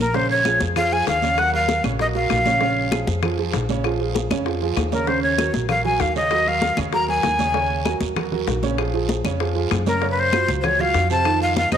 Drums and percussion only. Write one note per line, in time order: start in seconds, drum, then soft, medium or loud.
0.14 high bongo medium
0.14 high conga soft
0.14 long guiro medium
0.30 high conga soft
0.45 high bongo medium
0.45 high conga loud
0.45 short guiro medium
0.45 claves medium
0.60 high bongo soft
0.60 high conga medium
0.60 short guiro medium
0.76 high bongo medium
0.76 high conga soft
0.76 low conga medium
0.76 long guiro medium
0.76 claves medium
0.91 high bongo soft
0.91 high conga soft
1.07 high bongo medium
1.07 low bongo medium
1.07 high conga soft
1.07 short guiro medium
1.22 high bongo soft
1.22 high conga medium
1.22 short guiro medium
1.38 high bongo medium
1.38 high conga soft
1.38 long guiro medium
1.38 claves medium
1.53 high bongo soft
1.53 high conga soft
1.68 high bongo medium
1.68 high conga loud
1.68 short guiro medium
1.84 high bongo soft
1.84 high conga medium
1.84 short guiro medium
1.84 claves medium
1.99 high bongo medium
1.99 high conga soft
1.99 long guiro medium
2.15 high bongo soft
2.15 high conga soft
2.30 high bongo medium
2.30 low bongo medium
2.30 high conga medium
2.30 short guiro medium
2.30 claves medium
2.46 high conga medium
2.46 short guiro medium
2.61 high bongo medium
2.61 high conga soft
2.61 long guiro medium
2.77 high conga soft
2.92 high bongo medium
2.92 high conga loud
2.92 short guiro medium
2.92 claves medium
3.07 high bongo soft
3.07 high conga medium
3.07 short guiro medium
3.23 high bongo medium
3.23 high conga soft
3.23 low conga medium
3.23 long guiro medium
3.23 claves medium
3.38 high bongo soft
3.38 high conga soft
3.53 high bongo medium
3.53 low bongo medium
3.53 high conga soft
3.53 short guiro medium
3.69 high bongo soft
3.69 high conga medium
3.69 short guiro medium
3.84 high bongo medium
3.84 high conga soft
3.84 long guiro medium
3.84 claves medium
3.99 high bongo soft
3.99 high conga soft
4.15 high bongo medium
4.15 high conga loud
4.15 short guiro medium
4.31 high bongo soft
4.31 high conga medium
4.31 short guiro medium
4.31 claves medium
4.46 high bongo medium
4.46 high conga soft
4.46 long guiro medium
4.62 high bongo soft
4.62 high conga soft
4.76 high bongo medium
4.76 low bongo medium
4.76 high conga medium
4.76 short guiro medium
4.76 claves medium
4.92 high conga medium
4.92 short guiro medium
5.07 high bongo medium
5.07 high conga soft
5.07 long guiro medium
5.23 high conga soft
5.38 high bongo medium
5.38 high conga loud
5.38 short guiro medium
5.38 claves medium
5.53 high bongo soft
5.53 high conga loud
5.53 short guiro medium
5.69 high bongo medium
5.69 high conga soft
5.69 low conga medium
5.69 long guiro medium
5.69 claves medium
5.84 high bongo soft
5.84 high conga soft
5.84 low conga medium
6.00 high bongo medium
6.00 low bongo medium
6.00 high conga soft
6.00 short guiro medium
6.15 high bongo soft
6.15 short guiro medium
6.31 high bongo medium
6.31 high conga soft
6.31 long guiro medium
6.31 claves medium
6.46 high bongo soft
6.46 high conga soft
6.62 high bongo medium
6.62 high conga loud
6.62 short guiro medium
6.77 high bongo soft
6.77 high conga medium
6.77 short guiro medium
6.77 claves medium
6.93 high bongo medium
6.93 high conga soft
6.93 long guiro medium
7.08 high bongo soft
7.08 high conga soft
7.23 high bongo medium
7.23 low bongo medium
7.23 high conga medium
7.23 short guiro medium
7.23 claves medium
7.39 high conga medium
7.39 short guiro medium
7.54 high bongo medium
7.54 high conga soft
7.54 long guiro medium
7.70 high conga soft
7.85 high bongo medium
7.85 high conga loud
7.85 short guiro medium
7.85 claves medium
8.01 high bongo soft
8.01 high conga medium
8.01 short guiro medium
8.16 high bongo medium
8.16 high conga soft
8.16 low conga medium
8.16 long guiro medium
8.16 claves medium
8.32 high bongo soft
8.32 high conga soft
8.32 low conga medium
8.47 high bongo medium
8.47 low bongo medium
8.47 high conga soft
8.47 short guiro medium
8.63 high bongo soft
8.63 high conga medium
8.63 short guiro medium
8.78 high bongo medium
8.78 high conga soft
8.78 long guiro medium
8.78 claves medium
8.94 high bongo soft
8.94 high conga soft
9.09 high bongo medium
9.09 high conga medium
9.09 short guiro medium
9.25 high bongo soft
9.25 high conga medium
9.25 short guiro medium
9.25 claves medium
9.40 high bongo medium
9.40 high conga soft
9.40 long guiro medium
9.56 high bongo soft
9.56 high conga soft
9.71 high bongo medium
9.71 low bongo medium
9.71 high conga medium
9.71 short guiro medium
9.71 claves medium
9.86 high conga medium
9.86 short guiro medium
10.02 high bongo medium
10.02 high conga soft
10.02 long guiro medium
10.17 high conga soft
10.33 high bongo medium
10.33 high conga loud
10.33 short guiro medium
10.33 claves medium
10.48 high bongo soft
10.48 high conga medium
10.48 short guiro medium
10.64 high bongo medium
10.64 high conga soft
10.64 low conga medium
10.64 long guiro medium
10.64 claves medium
10.79 high bongo soft
10.79 high conga soft
10.79 low conga medium
10.94 high bongo medium
10.94 low bongo medium
10.94 high conga soft
10.94 short guiro medium
11.10 high bongo soft
11.10 short guiro medium
11.25 high bongo medium
11.25 high conga soft
11.25 long guiro medium
11.25 claves medium
11.41 high bongo soft
11.41 high conga soft
11.56 high bongo medium
11.56 high conga medium
11.56 short guiro medium
11.72 high bongo soft
11.72 high conga medium
11.72 short guiro medium
11.72 claves medium